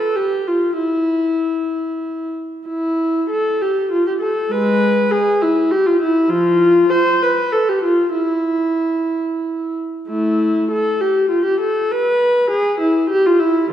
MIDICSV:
0, 0, Header, 1, 2, 480
1, 0, Start_track
1, 0, Tempo, 628272
1, 591, Time_signature, 6, 3, 24, 8
1, 2520, Tempo, 603015
1, 5880, Tempo, 640342
1, 7800, Tempo, 606061
1, 10688, End_track
2, 0, Start_track
2, 0, Title_t, "Viola"
2, 0, Program_c, 0, 41
2, 0, Note_on_c, 0, 69, 66
2, 121, Note_on_c, 0, 67, 69
2, 123, Note_off_c, 0, 69, 0
2, 354, Note_off_c, 0, 67, 0
2, 363, Note_on_c, 0, 65, 56
2, 597, Note_off_c, 0, 65, 0
2, 598, Note_on_c, 0, 64, 55
2, 1777, Note_off_c, 0, 64, 0
2, 2042, Note_on_c, 0, 64, 54
2, 2489, Note_off_c, 0, 64, 0
2, 2518, Note_on_c, 0, 69, 64
2, 2764, Note_off_c, 0, 69, 0
2, 2771, Note_on_c, 0, 67, 55
2, 3008, Note_off_c, 0, 67, 0
2, 3009, Note_on_c, 0, 65, 58
2, 3123, Note_off_c, 0, 65, 0
2, 3131, Note_on_c, 0, 67, 57
2, 3177, Note_off_c, 0, 67, 0
2, 3242, Note_on_c, 0, 69, 62
2, 3473, Note_off_c, 0, 69, 0
2, 3481, Note_on_c, 0, 56, 62
2, 3483, Note_on_c, 0, 71, 74
2, 3927, Note_off_c, 0, 56, 0
2, 3960, Note_off_c, 0, 71, 0
2, 3962, Note_on_c, 0, 68, 73
2, 4200, Note_off_c, 0, 68, 0
2, 4208, Note_on_c, 0, 64, 62
2, 4440, Note_off_c, 0, 64, 0
2, 4440, Note_on_c, 0, 67, 71
2, 4555, Note_off_c, 0, 67, 0
2, 4559, Note_on_c, 0, 65, 62
2, 4674, Note_off_c, 0, 65, 0
2, 4682, Note_on_c, 0, 64, 67
2, 4899, Note_on_c, 0, 65, 80
2, 4906, Note_on_c, 0, 53, 66
2, 4909, Note_off_c, 0, 64, 0
2, 5356, Note_off_c, 0, 53, 0
2, 5383, Note_on_c, 0, 72, 87
2, 5384, Note_off_c, 0, 65, 0
2, 5629, Note_off_c, 0, 72, 0
2, 5642, Note_on_c, 0, 71, 74
2, 5881, Note_on_c, 0, 69, 76
2, 5884, Note_off_c, 0, 71, 0
2, 5998, Note_off_c, 0, 69, 0
2, 6006, Note_on_c, 0, 67, 66
2, 6116, Note_on_c, 0, 65, 56
2, 6120, Note_off_c, 0, 67, 0
2, 6349, Note_off_c, 0, 65, 0
2, 6356, Note_on_c, 0, 64, 58
2, 7534, Note_off_c, 0, 64, 0
2, 7801, Note_on_c, 0, 64, 53
2, 7807, Note_on_c, 0, 57, 51
2, 8256, Note_off_c, 0, 64, 0
2, 8259, Note_off_c, 0, 57, 0
2, 8295, Note_on_c, 0, 69, 64
2, 8528, Note_on_c, 0, 67, 59
2, 8532, Note_off_c, 0, 69, 0
2, 8765, Note_on_c, 0, 65, 60
2, 8768, Note_off_c, 0, 67, 0
2, 8883, Note_on_c, 0, 67, 59
2, 8884, Note_off_c, 0, 65, 0
2, 9002, Note_off_c, 0, 67, 0
2, 9008, Note_on_c, 0, 69, 61
2, 9241, Note_off_c, 0, 69, 0
2, 9251, Note_on_c, 0, 71, 74
2, 9717, Note_on_c, 0, 68, 78
2, 9722, Note_off_c, 0, 71, 0
2, 9952, Note_off_c, 0, 68, 0
2, 9953, Note_on_c, 0, 64, 62
2, 10188, Note_on_c, 0, 67, 86
2, 10192, Note_off_c, 0, 64, 0
2, 10312, Note_off_c, 0, 67, 0
2, 10315, Note_on_c, 0, 65, 71
2, 10423, Note_on_c, 0, 64, 70
2, 10438, Note_off_c, 0, 65, 0
2, 10671, Note_off_c, 0, 64, 0
2, 10688, End_track
0, 0, End_of_file